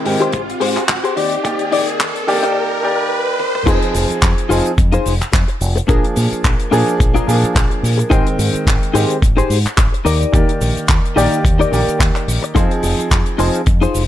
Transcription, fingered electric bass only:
0.06 0.15 G#2 medium
0.33 0.52 G#1 medium
0.61 0.76 G#2 medium
0.77 muted fingered electric bass stroke soft
0.89 0.99 G#1 medium
1.17 1.35 D#2 medium
1.45 1.54 D#2 medium
1.72 1.82 A#1 medium
2.00 2.10 D#2 loud
2.28 2.37 A#1 medium
3.67 3.76 F2 medium
3.95 4.04 F1 medium
4.10 muted fingered electric bass stroke soft
4.22 4.32 F2 loud
4.50 4.60 F1 medium
4.78 4.96 F2 medium
5.06 5.21 F1 medium
5.21 muted fingered electric bass stroke soft
5.33 5.43 F2 medium
5.61 5.79 F1 medium
5.89 5.98 A#1 medium
6.17 6.26 A#2 medium
6.32 muted fingered electric bass stroke soft
6.45 6.54 A#1 loud
6.72 6.82 A#2 medium
7.00 7.18 A#1 medium
7.28 7.43 A#2 medium
7.43 muted fingered electric bass stroke soft
7.56 7.65 A#1 loud
7.83 8.02 A#2 medium
8.11 8.21 G#1 loud
8.39 8.48 G#2 medium
8.54 muted fingered electric bass stroke soft
8.67 8.76 G#1 loud
8.94 9.04 G#2 medium
9.22 9.41 G#1 medium
9.50 9.65 G#2 medium
9.65 muted fingered electric bass stroke soft
9.78 9.87 G#1 medium
10.05 10.24 D#2 medium
10.34 10.43 D#2 loud
10.61 10.71 A#1 medium
10.77 muted fingered electric bass stroke soft
10.89 10.99 D#2 loud
11.17 11.26 A#1 medium
11.45 11.63 D#2 medium
11.72 11.82 A#1 medium
11.88 muted fingered electric bass stroke soft
12.00 12.10 D#2 medium
12.28 12.37 A#1 medium
12.56 12.65 F2 medium
12.83 12.93 F1 medium
12.99 muted fingered electric bass stroke soft
13.11 13.21 F2 loud
13.39 13.49 F1 medium
13.67 13.85 F2 medium
13.95 14.07 F1 medium

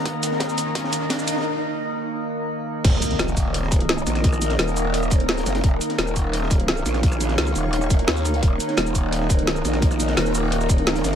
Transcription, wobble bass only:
2.85 3.01 D#1 medium
3.19 4.05 D#1 loud
4.07 4.58 A#1 loud
4.59 5.20 D#1 loud
5.20 5.45 D1 loud
5.46 5.62 F#1 loud
5.64 5.80 D#1 medium
5.98 6.84 D#1 loud
6.86 7.37 A#1 loud
7.38 7.54 C#2 loud
7.55 8.06 D#1 medium
8.08 8.41 D#2 loud
8.43 8.59 D#1 medium
8.78 9.63 D#1 loud
9.65 10.16 A#1 medium
10.17 10.78 D#1 loud
10.78 11.03 D1 loud
11.04 11.15 F#1 loud

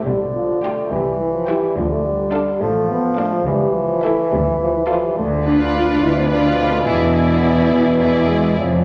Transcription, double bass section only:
0.06 0.75 B1 medium
0.92 1.61 C2 medium
1.77 2.45 D2 medium
2.62 3.31 A1 medium
3.47 4.16 C#2 medium
4.33 5.01 D2 medium
5.18 5.93 D2 medium
6.03 6.77 D2 medium
6.87 7.62 E1 medium
7.72 8.48 E1 medium
8.59 8.84 F1 medium

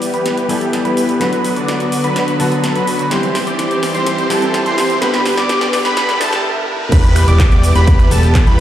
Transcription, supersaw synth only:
0.00 0.11 E3 medium
0.00 0.11 G3 medium
0.00 0.11 B3 medium
0.00 0.11 G4 medium
0.00 0.11 D5 medium
0.14 0.47 E3 medium
0.14 0.47 G3 medium
0.14 0.47 B3 medium
0.14 0.47 G4 medium
0.14 0.47 B4 loud
0.49 0.82 E3 medium
0.49 0.82 G3 medium
0.49 0.82 B3 medium
0.49 0.82 G4 medium
0.49 0.82 A4 medium
0.85 1.18 E3 loud
0.85 1.18 G3 medium
0.85 1.18 B3 medium
0.85 1.18 G4 medium
0.85 1.18 B4 loud
1.21 1.54 D3 medium
1.21 1.54 F#3 medium
1.21 1.54 B3 medium
1.21 1.54 F#4 medium
1.21 1.54 B4 loud
1.56 2.01 D3 medium
1.56 2.01 F#3 medium
1.56 2.01 B3 medium
1.56 2.01 F#4 medium
1.56 2.01 D5 medium
2.04 2.37 D3 loud
2.04 2.37 F#3 medium
2.04 2.37 B3 medium
2.04 2.37 F#4 medium
2.04 2.37 B4 loud
2.40 2.73 D3 medium
2.40 2.73 F#3 medium
2.40 2.73 B3 medium
2.40 2.73 F#4 medium
2.40 2.73 A4 medium
2.76 3.08 D3 medium
2.76 3.08 F#3 medium
2.76 3.08 B3 medium
2.76 3.08 F#4 medium
2.76 3.08 B4 loud
3.11 3.44 E3 medium
3.11 3.44 G3 medium
3.11 3.44 C4 medium
3.11 3.44 G4 medium
3.11 3.44 C5 loud
3.47 3.92 E3 medium
3.47 3.92 G3 medium
3.47 3.92 C4 medium
3.47 3.92 G4 medium
3.47 3.92 D5 medium
3.95 4.27 E3 medium
3.95 4.27 G3 medium
3.95 4.27 C4 medium
3.95 4.27 G4 medium
3.95 4.27 C5 loud
4.30 4.63 E3 medium
4.30 4.63 G3 medium
4.30 4.63 C4 medium
4.30 4.63 G4 medium
4.30 4.63 A4 medium
4.66 4.99 E3 medium
4.66 4.99 G3 medium
4.66 4.99 C4 medium
4.66 4.99 G4 medium
4.66 4.99 C5 loud
5.02 5.35 D3 medium
5.02 5.35 G3 medium
5.02 5.35 B3 medium
5.02 5.35 G4 medium
5.02 5.35 B4 loud
5.37 5.82 D3 medium
5.37 5.82 G3 medium
5.37 5.82 B3 medium
5.37 5.82 G4 medium
5.37 5.82 D5 medium
5.85 6.18 D3 loud
5.85 6.18 G3 medium
5.85 6.18 B3 medium
5.85 6.18 G4 medium
5.85 6.18 B4 loud
6.21 6.42 D3 medium
6.21 6.42 G3 medium
6.21 6.42 B3 medium
6.21 6.42 G4 medium
6.21 6.42 A4 loud
6.92 7.25 E3 medium
6.92 7.25 G3 medium
6.92 7.25 B3 medium
6.92 7.25 G4 medium
6.92 7.25 B4 loud
7.28 7.73 E3 medium
7.28 7.73 G3 medium
7.28 7.73 B3 medium
7.28 7.73 G4 medium
7.28 7.73 D5 medium
7.76 8.08 E3 loud
7.76 8.08 G3 medium
7.76 8.08 B3 medium
7.76 8.08 G4 medium
7.76 8.08 B4 loud
8.11 8.44 E3 medium
8.11 8.44 G3 medium
8.11 8.44 B3 medium
8.11 8.44 G4 medium
8.11 8.44 A4 medium
8.47 8.60 E3 medium
8.47 8.60 G3 medium
8.47 8.60 B3 medium
8.47 8.60 G4 medium
8.47 8.60 B4 loud

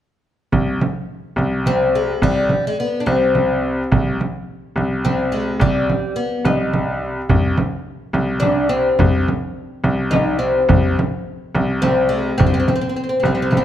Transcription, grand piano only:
0.52 0.77 C2 medium
1.36 2.10 C2 medium
2.22 2.46 C2 medium
3.07 3.80 C2 medium
3.92 4.16 C2 medium
4.76 5.49 C2 medium
5.59 5.85 C2 medium
6.45 7.18 C2 medium
7.30 7.54 C2 medium
8.13 8.87 C2 medium
8.99 9.24 C2 medium
9.84 10.57 C2 medium
10.69 10.93 C2 medium
11.54 12.27 C2 medium
12.39 12.63 C2 medium
13.23 13.64 C2 medium

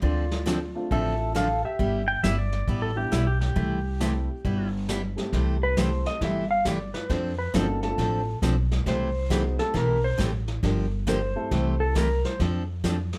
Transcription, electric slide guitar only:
0.03 0.87 F4 medium
0.03 0.87 D5 medium
0.92 1.32 A4 medium
0.92 1.35 E5 loud
1.36 1.62 A4 medium
1.36 1.65 F5 medium
1.65 2.05 G4 medium
1.65 2.06 E5 medium
5.63 5.77 B4 medium
5.80 6.07 C5 medium
6.07 6.21 D#5 medium
6.25 6.50 E5 medium
6.51 6.65 F5 loud
6.68 6.95 D5 medium
6.94 7.12 B4 medium
7.12 7.38 C5 medium
7.39 7.53 B4 medium
7.56 7.82 A4 medium
7.83 8.38 A4 medium
8.88 9.56 C5 medium
9.59 9.74 A4 medium
9.77 10.04 A#4 medium
10.04 10.19 C5 loud
11.09 11.77 C5 medium
11.80 11.95 A4 medium
11.97 12.24 A#4 medium
12.25 12.40 C5 medium

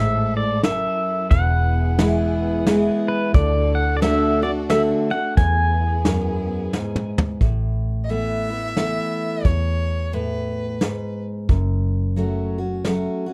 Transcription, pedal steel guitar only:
0.00 0.36 E5 medium
0.37 0.64 D5 medium
0.64 1.28 E5 medium
1.31 3.13 F#5 loud
3.08 3.33 B4 medium
3.34 3.77 D5 loud
3.75 3.95 F#5 loud
3.97 4.02 D5 medium
4.02 4.43 E5 loud
4.43 4.50 D5 loud
4.70 4.81 E5 loud
5.11 5.37 F#5 loud
5.37 7.10 G#5 loud

